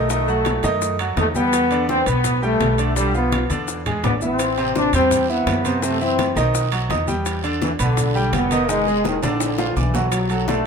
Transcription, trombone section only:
0, 0, Header, 1, 2, 480
1, 0, Start_track
1, 0, Tempo, 358209
1, 131, Time_signature, 4, 2, 24, 8
1, 14291, End_track
2, 0, Start_track
2, 0, Title_t, "Trombone section"
2, 0, Program_c, 0, 61
2, 0, Note_on_c, 0, 57, 97
2, 1337, Note_off_c, 0, 57, 0
2, 1588, Note_on_c, 0, 57, 95
2, 1692, Note_off_c, 0, 57, 0
2, 1821, Note_on_c, 0, 59, 105
2, 2486, Note_off_c, 0, 59, 0
2, 2541, Note_on_c, 0, 60, 110
2, 2759, Note_off_c, 0, 60, 0
2, 2781, Note_on_c, 0, 59, 100
2, 3256, Note_off_c, 0, 59, 0
2, 3267, Note_on_c, 0, 57, 99
2, 3929, Note_off_c, 0, 57, 0
2, 3974, Note_on_c, 0, 55, 104
2, 4196, Note_off_c, 0, 55, 0
2, 4229, Note_on_c, 0, 59, 87
2, 4667, Note_off_c, 0, 59, 0
2, 5420, Note_on_c, 0, 59, 86
2, 5526, Note_off_c, 0, 59, 0
2, 5658, Note_on_c, 0, 60, 96
2, 6324, Note_off_c, 0, 60, 0
2, 6380, Note_on_c, 0, 62, 106
2, 6599, Note_off_c, 0, 62, 0
2, 6626, Note_on_c, 0, 60, 104
2, 7065, Note_off_c, 0, 60, 0
2, 7096, Note_on_c, 0, 59, 95
2, 7812, Note_off_c, 0, 59, 0
2, 7821, Note_on_c, 0, 57, 96
2, 8055, Note_off_c, 0, 57, 0
2, 8061, Note_on_c, 0, 60, 86
2, 8502, Note_off_c, 0, 60, 0
2, 10225, Note_on_c, 0, 52, 83
2, 10330, Note_off_c, 0, 52, 0
2, 10470, Note_on_c, 0, 50, 97
2, 11129, Note_off_c, 0, 50, 0
2, 11180, Note_on_c, 0, 59, 104
2, 11652, Note_on_c, 0, 56, 110
2, 11654, Note_off_c, 0, 59, 0
2, 12130, Note_off_c, 0, 56, 0
2, 12133, Note_on_c, 0, 51, 90
2, 12354, Note_off_c, 0, 51, 0
2, 12373, Note_on_c, 0, 50, 78
2, 13040, Note_off_c, 0, 50, 0
2, 13086, Note_on_c, 0, 52, 80
2, 13533, Note_off_c, 0, 52, 0
2, 13562, Note_on_c, 0, 54, 92
2, 14044, Note_on_c, 0, 57, 87
2, 14045, Note_off_c, 0, 54, 0
2, 14291, Note_off_c, 0, 57, 0
2, 14291, End_track
0, 0, End_of_file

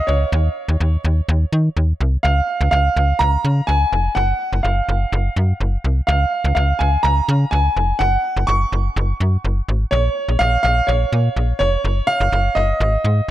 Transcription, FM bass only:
0, 0, Header, 1, 2, 480
1, 0, Start_track
1, 0, Key_signature, -5, "major"
1, 0, Tempo, 480000
1, 325, Time_signature, 4, 2, 24, 8
1, 13308, End_track
2, 0, Start_track
2, 0, Title_t, "FM bass"
2, 0, Program_c, 0, 39
2, 84, Note_on_c, 0, 37, 93
2, 252, Note_off_c, 0, 37, 0
2, 324, Note_on_c, 0, 39, 111
2, 492, Note_off_c, 0, 39, 0
2, 684, Note_on_c, 0, 39, 97
2, 769, Note_off_c, 0, 39, 0
2, 804, Note_on_c, 0, 39, 100
2, 972, Note_off_c, 0, 39, 0
2, 1045, Note_on_c, 0, 39, 103
2, 1213, Note_off_c, 0, 39, 0
2, 1285, Note_on_c, 0, 39, 112
2, 1453, Note_off_c, 0, 39, 0
2, 1525, Note_on_c, 0, 51, 96
2, 1693, Note_off_c, 0, 51, 0
2, 1765, Note_on_c, 0, 39, 93
2, 1933, Note_off_c, 0, 39, 0
2, 2005, Note_on_c, 0, 36, 98
2, 2173, Note_off_c, 0, 36, 0
2, 2246, Note_on_c, 0, 37, 107
2, 2413, Note_off_c, 0, 37, 0
2, 2606, Note_on_c, 0, 37, 105
2, 2690, Note_off_c, 0, 37, 0
2, 2725, Note_on_c, 0, 37, 105
2, 2893, Note_off_c, 0, 37, 0
2, 2965, Note_on_c, 0, 37, 106
2, 3133, Note_off_c, 0, 37, 0
2, 3205, Note_on_c, 0, 37, 115
2, 3373, Note_off_c, 0, 37, 0
2, 3445, Note_on_c, 0, 49, 100
2, 3613, Note_off_c, 0, 49, 0
2, 3685, Note_on_c, 0, 37, 94
2, 3853, Note_off_c, 0, 37, 0
2, 3925, Note_on_c, 0, 29, 97
2, 4093, Note_off_c, 0, 29, 0
2, 4165, Note_on_c, 0, 30, 105
2, 4333, Note_off_c, 0, 30, 0
2, 4525, Note_on_c, 0, 30, 100
2, 4609, Note_off_c, 0, 30, 0
2, 4645, Note_on_c, 0, 30, 107
2, 4813, Note_off_c, 0, 30, 0
2, 4886, Note_on_c, 0, 30, 105
2, 5053, Note_off_c, 0, 30, 0
2, 5125, Note_on_c, 0, 30, 114
2, 5293, Note_off_c, 0, 30, 0
2, 5364, Note_on_c, 0, 42, 101
2, 5532, Note_off_c, 0, 42, 0
2, 5604, Note_on_c, 0, 30, 102
2, 5772, Note_off_c, 0, 30, 0
2, 5844, Note_on_c, 0, 36, 97
2, 6012, Note_off_c, 0, 36, 0
2, 6084, Note_on_c, 0, 37, 118
2, 6253, Note_off_c, 0, 37, 0
2, 6444, Note_on_c, 0, 37, 107
2, 6528, Note_off_c, 0, 37, 0
2, 6564, Note_on_c, 0, 37, 109
2, 6732, Note_off_c, 0, 37, 0
2, 6804, Note_on_c, 0, 37, 100
2, 6972, Note_off_c, 0, 37, 0
2, 7044, Note_on_c, 0, 37, 110
2, 7212, Note_off_c, 0, 37, 0
2, 7285, Note_on_c, 0, 49, 108
2, 7453, Note_off_c, 0, 49, 0
2, 7525, Note_on_c, 0, 37, 99
2, 7693, Note_off_c, 0, 37, 0
2, 7765, Note_on_c, 0, 29, 99
2, 7933, Note_off_c, 0, 29, 0
2, 8005, Note_on_c, 0, 30, 110
2, 8173, Note_off_c, 0, 30, 0
2, 8365, Note_on_c, 0, 30, 105
2, 8449, Note_off_c, 0, 30, 0
2, 8485, Note_on_c, 0, 30, 111
2, 8653, Note_off_c, 0, 30, 0
2, 8724, Note_on_c, 0, 30, 106
2, 8892, Note_off_c, 0, 30, 0
2, 8964, Note_on_c, 0, 30, 120
2, 9132, Note_off_c, 0, 30, 0
2, 9204, Note_on_c, 0, 42, 104
2, 9372, Note_off_c, 0, 42, 0
2, 9445, Note_on_c, 0, 30, 103
2, 9613, Note_off_c, 0, 30, 0
2, 9685, Note_on_c, 0, 32, 99
2, 9853, Note_off_c, 0, 32, 0
2, 9924, Note_on_c, 0, 34, 109
2, 10093, Note_off_c, 0, 34, 0
2, 10285, Note_on_c, 0, 34, 94
2, 10369, Note_off_c, 0, 34, 0
2, 10405, Note_on_c, 0, 34, 113
2, 10573, Note_off_c, 0, 34, 0
2, 10645, Note_on_c, 0, 34, 111
2, 10813, Note_off_c, 0, 34, 0
2, 10884, Note_on_c, 0, 34, 115
2, 11052, Note_off_c, 0, 34, 0
2, 11125, Note_on_c, 0, 46, 101
2, 11293, Note_off_c, 0, 46, 0
2, 11364, Note_on_c, 0, 34, 100
2, 11532, Note_off_c, 0, 34, 0
2, 11604, Note_on_c, 0, 29, 96
2, 11773, Note_off_c, 0, 29, 0
2, 11845, Note_on_c, 0, 30, 109
2, 12013, Note_off_c, 0, 30, 0
2, 12204, Note_on_c, 0, 30, 109
2, 12289, Note_off_c, 0, 30, 0
2, 12324, Note_on_c, 0, 30, 112
2, 12493, Note_off_c, 0, 30, 0
2, 12564, Note_on_c, 0, 30, 99
2, 12732, Note_off_c, 0, 30, 0
2, 12805, Note_on_c, 0, 32, 117
2, 12973, Note_off_c, 0, 32, 0
2, 13045, Note_on_c, 0, 44, 103
2, 13213, Note_off_c, 0, 44, 0
2, 13308, End_track
0, 0, End_of_file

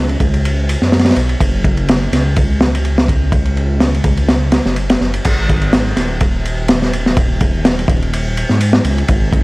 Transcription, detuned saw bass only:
0, 0, Header, 1, 2, 480
1, 0, Start_track
1, 0, Key_signature, 5, "minor"
1, 0, Tempo, 480000
1, 1408, Time_signature, 4, 2, 24, 8
1, 9436, End_track
2, 0, Start_track
2, 0, Title_t, "Detuned saw bass"
2, 0, Program_c, 0, 39
2, 0, Note_on_c, 0, 37, 94
2, 165, Note_off_c, 0, 37, 0
2, 202, Note_on_c, 0, 37, 97
2, 765, Note_off_c, 0, 37, 0
2, 818, Note_on_c, 0, 42, 86
2, 1125, Note_off_c, 0, 42, 0
2, 1167, Note_on_c, 0, 35, 110
2, 1354, Note_off_c, 0, 35, 0
2, 1406, Note_on_c, 0, 30, 101
2, 2084, Note_off_c, 0, 30, 0
2, 2126, Note_on_c, 0, 37, 99
2, 4004, Note_off_c, 0, 37, 0
2, 4041, Note_on_c, 0, 37, 92
2, 4604, Note_off_c, 0, 37, 0
2, 4657, Note_on_c, 0, 30, 97
2, 4964, Note_off_c, 0, 30, 0
2, 5008, Note_on_c, 0, 30, 91
2, 5195, Note_off_c, 0, 30, 0
2, 5254, Note_on_c, 0, 32, 100
2, 5928, Note_off_c, 0, 32, 0
2, 5967, Note_on_c, 0, 27, 96
2, 7845, Note_off_c, 0, 27, 0
2, 7881, Note_on_c, 0, 27, 96
2, 8444, Note_off_c, 0, 27, 0
2, 8500, Note_on_c, 0, 44, 89
2, 8806, Note_off_c, 0, 44, 0
2, 8846, Note_on_c, 0, 37, 106
2, 9034, Note_off_c, 0, 37, 0
2, 9087, Note_on_c, 0, 32, 100
2, 9436, Note_off_c, 0, 32, 0
2, 9436, End_track
0, 0, End_of_file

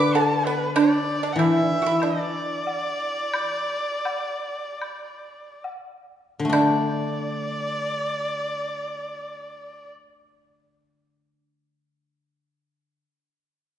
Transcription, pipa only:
0, 0, Header, 1, 2, 480
1, 0, Start_track
1, 0, Tempo, 628931
1, 581, Time_signature, 4, 2, 24, 8
1, 2031, Tempo, 690449
1, 2991, Tempo, 762389
1, 3471, Tempo, 828729
1, 3951, Tempo, 888889
1, 5871, Tempo, 904977
1, 8310, End_track
2, 0, Start_track
2, 0, Title_t, "Pipa"
2, 0, Program_c, 0, 105
2, 0, Note_on_c, 0, 71, 62
2, 104, Note_off_c, 0, 71, 0
2, 115, Note_on_c, 0, 69, 62
2, 333, Note_off_c, 0, 69, 0
2, 356, Note_on_c, 0, 59, 60
2, 570, Note_off_c, 0, 59, 0
2, 578, Note_on_c, 0, 62, 75
2, 908, Note_off_c, 0, 62, 0
2, 939, Note_on_c, 0, 62, 54
2, 1048, Note_off_c, 0, 62, 0
2, 1061, Note_on_c, 0, 64, 65
2, 1260, Note_off_c, 0, 64, 0
2, 1260, Note_on_c, 0, 62, 65
2, 1365, Note_off_c, 0, 62, 0
2, 1388, Note_on_c, 0, 66, 51
2, 1416, Note_off_c, 0, 66, 0
2, 1423, Note_on_c, 0, 64, 66
2, 1532, Note_off_c, 0, 64, 0
2, 1546, Note_on_c, 0, 62, 53
2, 2820, Note_off_c, 0, 62, 0
2, 2820, Note_on_c, 0, 61, 53
2, 3025, Note_off_c, 0, 61, 0
2, 3025, Note_on_c, 0, 60, 53
2, 3214, Note_off_c, 0, 60, 0
2, 3214, Note_on_c, 0, 59, 53
2, 3932, Note_off_c, 0, 59, 0
2, 4433, Note_on_c, 0, 62, 74
2, 6236, Note_off_c, 0, 62, 0
2, 8310, End_track
0, 0, End_of_file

